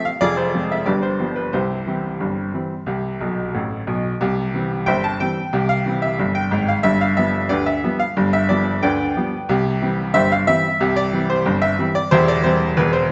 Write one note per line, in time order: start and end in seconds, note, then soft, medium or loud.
0.05 0.22 F5 medium
0.21 0.49 F1 medium
0.21 0.50 F2 medium
0.21 0.37 F4 medium
0.21 0.37 G#4 medium
0.21 0.38 D5 loud
0.37 0.71 C5 medium
0.54 0.72 F3 soft
0.54 0.73 G#3 medium
0.54 0.73 C4 medium
0.72 0.88 E5 medium
0.86 1.15 G1 medium
0.86 1.16 G2 medium
0.86 1.03 G4 medium
0.86 1.03 B4 medium
0.86 1.03 D5 medium
1.02 1.37 C5 medium
1.19 1.38 F3 soft
1.19 1.39 G3 medium
1.19 1.39 B3 medium
1.36 1.53 B4 medium
1.53 1.82 C2 medium
1.53 1.82 C3 medium
1.53 3.84 E4 medium
1.53 3.84 G4 medium
1.53 3.87 C5 medium
1.87 2.06 E3 soft
1.87 2.06 G3 soft
1.87 2.06 C4 medium
2.20 2.49 G1 medium
2.20 2.49 G2 medium
2.54 2.72 E3 soft
2.54 2.73 G3 soft
2.54 2.73 C4 soft
2.86 3.15 C2 medium
2.86 3.15 C3 medium
3.20 3.46 B1 medium
3.20 3.46 B2 medium
3.54 3.79 A1 medium
3.54 3.79 A2 medium
3.87 4.12 B1 medium
3.87 4.12 B2 medium
4.21 4.49 C2 medium
4.21 4.49 C3 medium
4.54 4.72 E3 medium
4.54 4.73 G3 medium
4.54 4.73 C4 medium
4.86 5.15 G1 medium
4.86 5.15 G2 medium
4.86 5.03 C5 medium
4.86 5.03 E5 medium
4.86 5.03 G5 loud
5.04 5.20 A5 medium
5.20 5.38 E3 medium
5.20 5.39 G3 medium
5.20 5.39 C4 medium
5.20 5.70 G5 loud
5.53 5.81 C2 medium
5.53 5.81 C3 loud
5.69 6.02 F5 loud
5.86 6.04 E3 soft
5.86 6.04 G3 medium
5.86 6.05 C4 medium
6.02 6.35 E5 medium
6.19 6.47 G1 medium
6.19 6.47 G2 medium
6.35 6.68 G5 medium
6.51 6.78 G#1 medium
6.51 6.78 G#2 medium
6.68 6.85 F5 medium
6.83 7.12 G1 medium
6.83 7.12 G2 loud
6.83 7.00 E5 loud
7.01 7.18 F5 medium
7.17 7.36 F3 medium
7.17 7.36 G3 medium
7.17 7.36 B3 medium
7.17 7.50 E5 medium
7.49 7.78 D2 medium
7.49 7.78 D3 medium
7.49 7.66 G4 medium
7.49 7.66 B4 medium
7.49 7.66 D5 medium
7.66 8.00 E5 medium
7.84 8.02 F3 medium
7.84 8.02 G3 medium
7.84 8.02 B3 medium
7.99 8.33 F5 loud
8.17 8.45 G1 medium
8.17 8.45 G2 loud
8.33 8.50 E5 loud
8.49 8.68 F3 medium
8.49 8.68 G3 medium
8.49 8.69 B3 medium
8.49 8.82 D5 medium
8.83 9.11 D2 medium
8.83 9.11 D3 medium
8.83 9.45 B4 medium
8.83 9.45 D5 medium
8.83 9.49 G5 loud
9.16 9.34 F3 medium
9.16 9.35 G3 medium
9.16 9.35 B3 medium
9.49 9.77 C2 loud
9.49 9.77 C3 loud
9.82 10.00 E3 medium
9.82 10.00 G3 medium
9.82 10.00 C4 medium
10.14 10.42 G1 medium
10.14 10.42 G2 medium
10.14 10.30 G4 medium
10.14 10.30 C5 medium
10.14 10.31 E5 loud
10.32 10.48 F5 loud
10.47 10.66 E3 medium
10.47 10.66 G3 medium
10.47 10.66 C4 medium
10.47 10.97 E5 loud
10.80 11.08 C2 loud
10.80 11.08 C3 loud
10.96 11.29 D5 loud
11.13 11.31 E3 medium
11.13 11.31 G3 medium
11.13 11.32 C4 medium
11.30 11.63 C5 loud
11.46 11.74 G1 loud
11.46 11.74 G2 medium
11.62 11.95 E5 loud
11.79 11.97 E3 medium
11.79 11.97 G3 medium
11.79 11.98 C4 medium
11.95 12.12 D5 loud
12.11 12.40 E1 loud
12.11 12.40 E2 loud
12.11 12.27 E4 medium
12.11 12.27 G4 medium
12.11 12.28 C5 loud
12.28 12.45 D5 loud
12.44 12.62 E3 medium
12.44 12.63 G3 medium
12.44 12.63 C4 medium
12.44 12.77 C5 loud
12.77 13.05 E1 loud
12.77 13.05 E2 medium
12.77 12.94 B4 loud
12.93 13.12 C5 loud